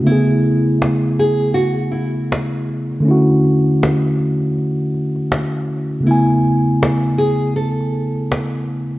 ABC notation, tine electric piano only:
X:1
M:4/4
L:1/8
Q:"Swing 16ths" 1/4=80
K:A
V:1 name="Tine electric piano"
[C,A,B,EG]8 | [D,A,CEF]8 | [C,A,B,Eg]8 |]